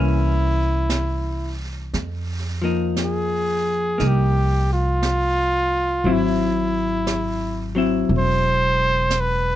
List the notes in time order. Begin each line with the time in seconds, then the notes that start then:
Already playing: C2 E3 A#3 C#4 E4
0.90 brush sweep, snare, hi-hat pedal
1.94 F2, brush sweep, snare
2.62 F3 A#3 D#4
2.96 brush sweep, snare, hi-hat pedal
3.04 G#4
3.98 C2 A#3 D#4, brush sweep, snare
4.07 G4
4.73 F4
5.03 brush sweep, snare, hi-hat pedal
6.04 G#1 F#3 C4 E4, brush sweep
6.13 E4
7.07 brush sweep, snare, hi-hat pedal
7.75 F#3 C4 E4
8.08 E1, brush sweep
8.18 C5
9.10 brush sweep, snare, hi-hat pedal
9.21 B4